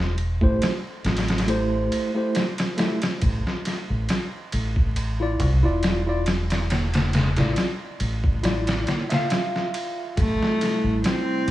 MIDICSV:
0, 0, Header, 1, 6, 480
1, 0, Start_track
1, 0, Tempo, 869565
1, 1779, Time_signature, 4, 2, 24, 8
1, 6352, End_track
2, 0, Start_track
2, 0, Title_t, "Tine electric piano"
2, 0, Program_c, 0, 4
2, 227, Note_on_c, 0, 57, 75
2, 231, Note_on_c, 0, 64, 69
2, 236, Note_on_c, 0, 67, 70
2, 239, Note_on_c, 0, 72, 81
2, 382, Note_off_c, 0, 57, 0
2, 385, Note_off_c, 0, 64, 0
2, 387, Note_off_c, 0, 67, 0
2, 388, Note_off_c, 0, 72, 0
2, 813, Note_on_c, 0, 57, 82
2, 818, Note_on_c, 0, 64, 78
2, 823, Note_on_c, 0, 67, 75
2, 826, Note_on_c, 0, 72, 95
2, 1155, Note_off_c, 0, 57, 0
2, 1158, Note_off_c, 0, 64, 0
2, 1160, Note_off_c, 0, 67, 0
2, 1162, Note_off_c, 0, 72, 0
2, 1183, Note_on_c, 0, 57, 71
2, 1189, Note_on_c, 0, 64, 69
2, 1193, Note_on_c, 0, 67, 65
2, 1198, Note_on_c, 0, 72, 75
2, 1340, Note_off_c, 0, 57, 0
2, 1344, Note_off_c, 0, 64, 0
2, 1346, Note_off_c, 0, 67, 0
2, 1348, Note_off_c, 0, 72, 0
2, 1531, Note_on_c, 0, 57, 85
2, 1535, Note_on_c, 0, 64, 83
2, 1542, Note_on_c, 0, 67, 82
2, 1544, Note_on_c, 0, 76, 93
2, 1644, Note_off_c, 0, 57, 0
2, 1647, Note_off_c, 0, 64, 0
2, 1650, Note_off_c, 0, 67, 0
2, 1651, Note_off_c, 0, 76, 0
2, 2870, Note_on_c, 0, 64, 88
2, 2876, Note_on_c, 0, 65, 81
2, 2884, Note_on_c, 0, 74, 96
2, 3024, Note_off_c, 0, 64, 0
2, 3027, Note_off_c, 0, 65, 0
2, 3031, Note_off_c, 0, 74, 0
2, 3108, Note_on_c, 0, 64, 86
2, 3114, Note_on_c, 0, 65, 83
2, 3120, Note_on_c, 0, 74, 96
2, 3317, Note_off_c, 0, 64, 0
2, 3320, Note_off_c, 0, 65, 0
2, 3324, Note_off_c, 0, 74, 0
2, 3347, Note_on_c, 0, 64, 86
2, 3352, Note_on_c, 0, 65, 80
2, 3361, Note_on_c, 0, 74, 101
2, 3440, Note_off_c, 0, 64, 0
2, 3442, Note_off_c, 0, 65, 0
2, 3447, Note_off_c, 0, 74, 0
2, 4068, Note_on_c, 0, 64, 77
2, 4073, Note_on_c, 0, 65, 71
2, 4080, Note_on_c, 0, 74, 79
2, 4223, Note_off_c, 0, 64, 0
2, 4226, Note_off_c, 0, 65, 0
2, 4229, Note_off_c, 0, 74, 0
2, 4653, Note_on_c, 0, 64, 87
2, 4658, Note_on_c, 0, 65, 74
2, 4665, Note_on_c, 0, 74, 93
2, 4995, Note_off_c, 0, 64, 0
2, 4998, Note_off_c, 0, 65, 0
2, 5001, Note_off_c, 0, 74, 0
2, 5019, Note_on_c, 0, 76, 87
2, 5030, Note_on_c, 0, 65, 72
2, 5045, Note_on_c, 0, 77, 93
2, 5601, Note_off_c, 0, 76, 0
2, 5606, Note_off_c, 0, 65, 0
2, 5614, Note_off_c, 0, 77, 0
2, 6352, End_track
3, 0, Start_track
3, 0, Title_t, "Cello"
3, 0, Program_c, 1, 42
3, 5621, Note_on_c, 1, 57, 105
3, 6078, Note_off_c, 1, 57, 0
3, 6102, Note_on_c, 1, 60, 94
3, 6352, Note_off_c, 1, 60, 0
3, 6352, End_track
4, 0, Start_track
4, 0, Title_t, "Ambient pad"
4, 0, Program_c, 2, 92
4, 5617, Note_on_c, 2, 64, 89
4, 5619, Note_on_c, 2, 55, 75
4, 5619, Note_on_c, 2, 57, 74
4, 5620, Note_on_c, 2, 48, 79
4, 6352, Note_off_c, 2, 48, 0
4, 6352, Note_off_c, 2, 55, 0
4, 6352, Note_off_c, 2, 57, 0
4, 6352, Note_off_c, 2, 64, 0
4, 6352, End_track
5, 0, Start_track
5, 0, Title_t, "Fingered electric bass"
5, 0, Program_c, 3, 33
5, 0, Note_on_c, 3, 28, 91
5, 204, Note_off_c, 3, 28, 0
5, 228, Note_on_c, 3, 33, 81
5, 325, Note_off_c, 3, 33, 0
5, 575, Note_on_c, 3, 33, 78
5, 1036, Note_off_c, 3, 33, 0
5, 1776, Note_on_c, 3, 33, 91
5, 1892, Note_off_c, 3, 33, 0
5, 2151, Note_on_c, 3, 33, 77
5, 2246, Note_off_c, 3, 33, 0
5, 2501, Note_on_c, 3, 33, 79
5, 2959, Note_off_c, 3, 33, 0
5, 2978, Note_on_c, 3, 36, 84
5, 3093, Note_off_c, 3, 36, 0
5, 3110, Note_on_c, 3, 28, 93
5, 4045, Note_off_c, 3, 28, 0
5, 4069, Note_on_c, 3, 33, 74
5, 4166, Note_off_c, 3, 33, 0
5, 4416, Note_on_c, 3, 33, 82
5, 4876, Note_off_c, 3, 33, 0
5, 5614, Note_on_c, 3, 33, 88
5, 5731, Note_off_c, 3, 33, 0
5, 5981, Note_on_c, 3, 33, 76
5, 6082, Note_off_c, 3, 33, 0
5, 6333, Note_on_c, 3, 33, 83
5, 6352, Note_off_c, 3, 33, 0
5, 6352, End_track
6, 0, Start_track
6, 0, Title_t, "Drums"
6, 0, Note_on_c, 9, 38, 51
6, 54, Note_off_c, 9, 38, 0
6, 98, Note_on_c, 9, 51, 62
6, 153, Note_off_c, 9, 51, 0
6, 228, Note_on_c, 9, 36, 84
6, 283, Note_off_c, 9, 36, 0
6, 341, Note_on_c, 9, 51, 81
6, 349, Note_on_c, 9, 38, 103
6, 396, Note_off_c, 9, 51, 0
6, 405, Note_off_c, 9, 38, 0
6, 577, Note_on_c, 9, 51, 62
6, 586, Note_on_c, 9, 38, 81
6, 632, Note_off_c, 9, 51, 0
6, 641, Note_off_c, 9, 38, 0
6, 644, Note_on_c, 9, 51, 62
6, 653, Note_on_c, 9, 38, 80
6, 699, Note_off_c, 9, 51, 0
6, 708, Note_off_c, 9, 38, 0
6, 709, Note_on_c, 9, 51, 62
6, 717, Note_on_c, 9, 38, 81
6, 763, Note_off_c, 9, 51, 0
6, 763, Note_on_c, 9, 51, 62
6, 771, Note_off_c, 9, 38, 0
6, 771, Note_on_c, 9, 38, 77
6, 818, Note_off_c, 9, 51, 0
6, 818, Note_on_c, 9, 51, 85
6, 826, Note_off_c, 9, 38, 0
6, 873, Note_off_c, 9, 51, 0
6, 1059, Note_on_c, 9, 51, 61
6, 1114, Note_off_c, 9, 51, 0
6, 1296, Note_on_c, 9, 51, 75
6, 1304, Note_on_c, 9, 38, 90
6, 1351, Note_off_c, 9, 51, 0
6, 1360, Note_off_c, 9, 38, 0
6, 1425, Note_on_c, 9, 51, 72
6, 1434, Note_on_c, 9, 38, 95
6, 1481, Note_off_c, 9, 51, 0
6, 1489, Note_off_c, 9, 38, 0
6, 1534, Note_on_c, 9, 51, 81
6, 1542, Note_on_c, 9, 38, 101
6, 1589, Note_off_c, 9, 51, 0
6, 1597, Note_off_c, 9, 38, 0
6, 1666, Note_on_c, 9, 51, 70
6, 1674, Note_on_c, 9, 38, 101
6, 1721, Note_off_c, 9, 51, 0
6, 1729, Note_off_c, 9, 38, 0
6, 1775, Note_on_c, 9, 51, 83
6, 1777, Note_on_c, 9, 36, 103
6, 1830, Note_off_c, 9, 51, 0
6, 1832, Note_off_c, 9, 36, 0
6, 1914, Note_on_c, 9, 38, 52
6, 1969, Note_off_c, 9, 38, 0
6, 2016, Note_on_c, 9, 51, 61
6, 2024, Note_on_c, 9, 38, 40
6, 2071, Note_off_c, 9, 51, 0
6, 2079, Note_off_c, 9, 38, 0
6, 2256, Note_on_c, 9, 51, 86
6, 2264, Note_on_c, 9, 38, 101
6, 2311, Note_off_c, 9, 51, 0
6, 2319, Note_off_c, 9, 38, 0
6, 2497, Note_on_c, 9, 51, 62
6, 2553, Note_off_c, 9, 51, 0
6, 2629, Note_on_c, 9, 36, 81
6, 2684, Note_off_c, 9, 36, 0
6, 2739, Note_on_c, 9, 51, 81
6, 2794, Note_off_c, 9, 51, 0
6, 2979, Note_on_c, 9, 36, 89
6, 2979, Note_on_c, 9, 51, 61
6, 3034, Note_off_c, 9, 36, 0
6, 3034, Note_off_c, 9, 51, 0
6, 3216, Note_on_c, 9, 51, 74
6, 3224, Note_on_c, 9, 38, 107
6, 3271, Note_off_c, 9, 51, 0
6, 3280, Note_off_c, 9, 38, 0
6, 3456, Note_on_c, 9, 51, 77
6, 3464, Note_on_c, 9, 38, 101
6, 3511, Note_off_c, 9, 51, 0
6, 3520, Note_off_c, 9, 38, 0
6, 3590, Note_on_c, 9, 51, 75
6, 3598, Note_on_c, 9, 38, 100
6, 3645, Note_off_c, 9, 51, 0
6, 3654, Note_off_c, 9, 38, 0
6, 3700, Note_on_c, 9, 51, 77
6, 3708, Note_on_c, 9, 38, 101
6, 3755, Note_off_c, 9, 51, 0
6, 3763, Note_off_c, 9, 38, 0
6, 3829, Note_on_c, 9, 51, 80
6, 3837, Note_on_c, 9, 38, 103
6, 3884, Note_off_c, 9, 51, 0
6, 3892, Note_off_c, 9, 38, 0
6, 3937, Note_on_c, 9, 51, 71
6, 3945, Note_on_c, 9, 38, 93
6, 3992, Note_off_c, 9, 51, 0
6, 4001, Note_off_c, 9, 38, 0
6, 4065, Note_on_c, 9, 51, 68
6, 4073, Note_on_c, 9, 38, 93
6, 4120, Note_off_c, 9, 51, 0
6, 4128, Note_off_c, 9, 38, 0
6, 4174, Note_on_c, 9, 51, 83
6, 4182, Note_on_c, 9, 38, 106
6, 4229, Note_off_c, 9, 51, 0
6, 4238, Note_off_c, 9, 38, 0
6, 4416, Note_on_c, 9, 51, 62
6, 4471, Note_off_c, 9, 51, 0
6, 4547, Note_on_c, 9, 36, 92
6, 4602, Note_off_c, 9, 36, 0
6, 4657, Note_on_c, 9, 51, 76
6, 4665, Note_on_c, 9, 38, 98
6, 4712, Note_off_c, 9, 51, 0
6, 4720, Note_off_c, 9, 38, 0
6, 4787, Note_on_c, 9, 51, 78
6, 4795, Note_on_c, 9, 38, 104
6, 4842, Note_off_c, 9, 51, 0
6, 4850, Note_off_c, 9, 38, 0
6, 4896, Note_on_c, 9, 51, 74
6, 4904, Note_on_c, 9, 38, 100
6, 4951, Note_off_c, 9, 51, 0
6, 4959, Note_off_c, 9, 38, 0
6, 5024, Note_on_c, 9, 51, 72
6, 5033, Note_on_c, 9, 38, 98
6, 5079, Note_off_c, 9, 51, 0
6, 5088, Note_off_c, 9, 38, 0
6, 5135, Note_on_c, 9, 51, 78
6, 5143, Note_on_c, 9, 38, 113
6, 5190, Note_off_c, 9, 51, 0
6, 5198, Note_off_c, 9, 38, 0
6, 5275, Note_on_c, 9, 38, 50
6, 5330, Note_off_c, 9, 38, 0
6, 5377, Note_on_c, 9, 51, 79
6, 5432, Note_off_c, 9, 51, 0
6, 5616, Note_on_c, 9, 36, 106
6, 5616, Note_on_c, 9, 51, 81
6, 5671, Note_off_c, 9, 36, 0
6, 5671, Note_off_c, 9, 51, 0
6, 5755, Note_on_c, 9, 38, 52
6, 5810, Note_off_c, 9, 38, 0
6, 5858, Note_on_c, 9, 51, 58
6, 5866, Note_on_c, 9, 38, 43
6, 5913, Note_off_c, 9, 51, 0
6, 5921, Note_off_c, 9, 38, 0
6, 6094, Note_on_c, 9, 51, 79
6, 6103, Note_on_c, 9, 38, 106
6, 6150, Note_off_c, 9, 51, 0
6, 6158, Note_off_c, 9, 38, 0
6, 6335, Note_on_c, 9, 51, 68
6, 6352, Note_off_c, 9, 51, 0
6, 6352, End_track
0, 0, End_of_file